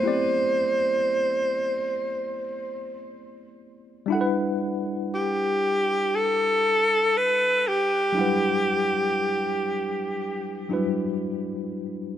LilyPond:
<<
  \new Staff \with { instrumentName = "Alto saxophone" } { \time 4/4 \key e \minor \tempo 4 = 59 c''2. r4 | r4 g'4 a'4 b'8 g'8~ | g'2~ g'8 r4. | }
  \new Staff \with { instrumentName = "Tine electric piano" } { \time 4/4 \key e \minor <a b c' e' g' d''>1 | <g d' e' a' b' fis''>1 | <fis g d' e' b' fis''>2~ <fis g d' e' b' fis''>8 <fis g d' e' fis' b'>4. | }
>>